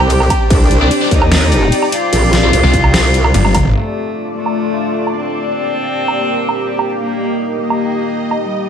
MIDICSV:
0, 0, Header, 1, 7, 480
1, 0, Start_track
1, 0, Tempo, 405405
1, 598, Time_signature, 4, 2, 24, 8
1, 10293, End_track
2, 0, Start_track
2, 0, Title_t, "Analog synth pad"
2, 0, Program_c, 0, 89
2, 0, Note_on_c, 0, 60, 85
2, 0, Note_on_c, 0, 67, 77
2, 0, Note_on_c, 0, 74, 96
2, 560, Note_off_c, 0, 74, 0
2, 596, Note_on_c, 0, 74, 99
2, 4391, Note_off_c, 0, 67, 0
2, 4392, Note_off_c, 0, 60, 0
2, 4399, Note_off_c, 0, 74, 0
2, 4438, Note_on_c, 0, 65, 75
2, 4438, Note_on_c, 0, 74, 92
2, 4439, Note_on_c, 0, 57, 83
2, 4439, Note_on_c, 0, 62, 72
2, 6339, Note_off_c, 0, 57, 0
2, 6339, Note_off_c, 0, 65, 0
2, 6358, Note_on_c, 0, 67, 76
2, 6359, Note_on_c, 0, 58, 83
2, 8240, Note_off_c, 0, 62, 0
2, 8240, Note_off_c, 0, 74, 0
2, 8279, Note_on_c, 0, 63, 76
2, 8279, Note_on_c, 0, 75, 92
2, 10160, Note_off_c, 0, 58, 0
2, 10160, Note_off_c, 0, 67, 0
2, 10180, Note_off_c, 0, 63, 0
2, 10198, Note_on_c, 0, 60, 84
2, 10199, Note_on_c, 0, 63, 75
2, 10199, Note_on_c, 0, 67, 75
2, 10293, Note_off_c, 0, 60, 0
2, 10293, Note_off_c, 0, 63, 0
2, 10293, Note_off_c, 0, 67, 0
2, 10293, Note_off_c, 0, 75, 0
2, 10293, End_track
3, 0, Start_track
3, 0, Title_t, "Distorted electric guitar"
3, 0, Program_c, 1, 30
3, 958, Note_on_c, 1, 74, 96
3, 962, Note_on_c, 1, 63, 75
3, 966, Note_on_c, 1, 60, 78
3, 1029, Note_off_c, 1, 60, 0
3, 1029, Note_off_c, 1, 63, 0
3, 1029, Note_off_c, 1, 74, 0
3, 1198, Note_on_c, 1, 74, 92
3, 1201, Note_on_c, 1, 63, 66
3, 1206, Note_on_c, 1, 60, 68
3, 1269, Note_off_c, 1, 60, 0
3, 1269, Note_off_c, 1, 63, 0
3, 1269, Note_off_c, 1, 74, 0
3, 2877, Note_on_c, 1, 74, 95
3, 2882, Note_on_c, 1, 63, 78
3, 2887, Note_on_c, 1, 60, 77
3, 2949, Note_off_c, 1, 60, 0
3, 2949, Note_off_c, 1, 63, 0
3, 2949, Note_off_c, 1, 74, 0
3, 3118, Note_on_c, 1, 74, 103
3, 3124, Note_on_c, 1, 63, 83
3, 3127, Note_on_c, 1, 60, 79
3, 3189, Note_off_c, 1, 60, 0
3, 3189, Note_off_c, 1, 63, 0
3, 3189, Note_off_c, 1, 74, 0
3, 10293, End_track
4, 0, Start_track
4, 0, Title_t, "Cello"
4, 0, Program_c, 2, 42
4, 0, Note_on_c, 2, 67, 114
4, 504, Note_off_c, 2, 67, 0
4, 599, Note_on_c, 2, 62, 107
4, 1225, Note_off_c, 2, 62, 0
4, 1317, Note_on_c, 2, 63, 102
4, 2184, Note_off_c, 2, 63, 0
4, 2279, Note_on_c, 2, 65, 112
4, 4345, Note_off_c, 2, 65, 0
4, 4438, Note_on_c, 2, 57, 89
4, 5064, Note_off_c, 2, 57, 0
4, 5157, Note_on_c, 2, 57, 89
4, 6024, Note_off_c, 2, 57, 0
4, 6118, Note_on_c, 2, 60, 98
4, 8185, Note_off_c, 2, 60, 0
4, 8281, Note_on_c, 2, 58, 94
4, 8906, Note_off_c, 2, 58, 0
4, 9001, Note_on_c, 2, 58, 90
4, 9866, Note_off_c, 2, 58, 0
4, 9959, Note_on_c, 2, 55, 105
4, 10293, Note_off_c, 2, 55, 0
4, 10293, End_track
5, 0, Start_track
5, 0, Title_t, "Wobble bass"
5, 0, Program_c, 3, 39
5, 0, Note_on_c, 3, 36, 98
5, 339, Note_off_c, 3, 36, 0
5, 597, Note_on_c, 3, 36, 99
5, 819, Note_off_c, 3, 36, 0
5, 838, Note_on_c, 3, 36, 99
5, 1059, Note_off_c, 3, 36, 0
5, 1317, Note_on_c, 3, 39, 99
5, 2019, Note_off_c, 3, 39, 0
5, 2517, Note_on_c, 3, 34, 98
5, 2979, Note_off_c, 3, 34, 0
5, 2998, Note_on_c, 3, 36, 95
5, 3101, Note_off_c, 3, 36, 0
5, 3477, Note_on_c, 3, 36, 102
5, 3939, Note_off_c, 3, 36, 0
5, 10293, End_track
6, 0, Start_track
6, 0, Title_t, "Detuned saw bass"
6, 0, Program_c, 4, 39
6, 3119, Note_on_c, 4, 36, 98
6, 3459, Note_off_c, 4, 36, 0
6, 3957, Note_on_c, 4, 31, 100
6, 4419, Note_off_c, 4, 31, 0
6, 10293, End_track
7, 0, Start_track
7, 0, Title_t, "Drums"
7, 1, Note_on_c, 9, 77, 88
7, 118, Note_on_c, 9, 42, 76
7, 118, Note_on_c, 9, 49, 49
7, 119, Note_off_c, 9, 77, 0
7, 237, Note_off_c, 9, 42, 0
7, 237, Note_off_c, 9, 49, 0
7, 241, Note_on_c, 9, 77, 64
7, 357, Note_on_c, 9, 36, 60
7, 358, Note_off_c, 9, 77, 0
7, 358, Note_on_c, 9, 46, 93
7, 358, Note_on_c, 9, 77, 81
7, 476, Note_off_c, 9, 36, 0
7, 477, Note_off_c, 9, 46, 0
7, 477, Note_off_c, 9, 77, 0
7, 597, Note_on_c, 9, 36, 118
7, 598, Note_on_c, 9, 42, 77
7, 598, Note_on_c, 9, 49, 70
7, 716, Note_off_c, 9, 36, 0
7, 716, Note_off_c, 9, 42, 0
7, 716, Note_off_c, 9, 49, 0
7, 838, Note_on_c, 9, 42, 54
7, 956, Note_off_c, 9, 42, 0
7, 1078, Note_on_c, 9, 42, 75
7, 1078, Note_on_c, 9, 49, 49
7, 1197, Note_off_c, 9, 42, 0
7, 1197, Note_off_c, 9, 49, 0
7, 1317, Note_on_c, 9, 36, 59
7, 1318, Note_on_c, 9, 42, 54
7, 1436, Note_off_c, 9, 36, 0
7, 1436, Note_off_c, 9, 42, 0
7, 1441, Note_on_c, 9, 77, 83
7, 1558, Note_on_c, 9, 38, 116
7, 1558, Note_on_c, 9, 42, 77
7, 1558, Note_on_c, 9, 49, 70
7, 1559, Note_off_c, 9, 77, 0
7, 1676, Note_off_c, 9, 38, 0
7, 1676, Note_off_c, 9, 42, 0
7, 1676, Note_off_c, 9, 49, 0
7, 1798, Note_on_c, 9, 42, 52
7, 1917, Note_off_c, 9, 42, 0
7, 2038, Note_on_c, 9, 42, 78
7, 2038, Note_on_c, 9, 49, 50
7, 2157, Note_off_c, 9, 42, 0
7, 2157, Note_off_c, 9, 49, 0
7, 2160, Note_on_c, 9, 77, 65
7, 2278, Note_on_c, 9, 46, 95
7, 2279, Note_off_c, 9, 77, 0
7, 2396, Note_off_c, 9, 46, 0
7, 2518, Note_on_c, 9, 42, 84
7, 2518, Note_on_c, 9, 49, 69
7, 2637, Note_off_c, 9, 42, 0
7, 2637, Note_off_c, 9, 49, 0
7, 2758, Note_on_c, 9, 38, 61
7, 2758, Note_on_c, 9, 42, 56
7, 2876, Note_off_c, 9, 38, 0
7, 2876, Note_off_c, 9, 42, 0
7, 2998, Note_on_c, 9, 42, 78
7, 2998, Note_on_c, 9, 49, 48
7, 3117, Note_off_c, 9, 42, 0
7, 3117, Note_off_c, 9, 49, 0
7, 3237, Note_on_c, 9, 36, 62
7, 3239, Note_on_c, 9, 42, 53
7, 3356, Note_off_c, 9, 36, 0
7, 3357, Note_off_c, 9, 42, 0
7, 3361, Note_on_c, 9, 77, 77
7, 3479, Note_off_c, 9, 77, 0
7, 3479, Note_on_c, 9, 38, 116
7, 3479, Note_on_c, 9, 42, 81
7, 3479, Note_on_c, 9, 49, 69
7, 3597, Note_off_c, 9, 38, 0
7, 3597, Note_off_c, 9, 42, 0
7, 3597, Note_off_c, 9, 49, 0
7, 3719, Note_on_c, 9, 42, 52
7, 3837, Note_off_c, 9, 42, 0
7, 3841, Note_on_c, 9, 77, 80
7, 3958, Note_on_c, 9, 42, 84
7, 3958, Note_on_c, 9, 48, 64
7, 3958, Note_on_c, 9, 49, 50
7, 3959, Note_off_c, 9, 77, 0
7, 4077, Note_off_c, 9, 42, 0
7, 4077, Note_off_c, 9, 48, 0
7, 4077, Note_off_c, 9, 49, 0
7, 4081, Note_on_c, 9, 48, 67
7, 4081, Note_on_c, 9, 77, 61
7, 4197, Note_on_c, 9, 36, 62
7, 4198, Note_off_c, 9, 77, 0
7, 4198, Note_on_c, 9, 46, 99
7, 4198, Note_on_c, 9, 47, 88
7, 4198, Note_on_c, 9, 77, 78
7, 4199, Note_off_c, 9, 48, 0
7, 4316, Note_off_c, 9, 36, 0
7, 4316, Note_off_c, 9, 46, 0
7, 4316, Note_off_c, 9, 47, 0
7, 4316, Note_off_c, 9, 77, 0
7, 4320, Note_on_c, 9, 45, 85
7, 4438, Note_off_c, 9, 45, 0
7, 5281, Note_on_c, 9, 77, 67
7, 5399, Note_off_c, 9, 77, 0
7, 6001, Note_on_c, 9, 77, 52
7, 6119, Note_off_c, 9, 77, 0
7, 7201, Note_on_c, 9, 77, 67
7, 7319, Note_off_c, 9, 77, 0
7, 7681, Note_on_c, 9, 77, 69
7, 7799, Note_off_c, 9, 77, 0
7, 8039, Note_on_c, 9, 77, 69
7, 8158, Note_off_c, 9, 77, 0
7, 9121, Note_on_c, 9, 77, 71
7, 9239, Note_off_c, 9, 77, 0
7, 9841, Note_on_c, 9, 77, 57
7, 9959, Note_off_c, 9, 77, 0
7, 10293, End_track
0, 0, End_of_file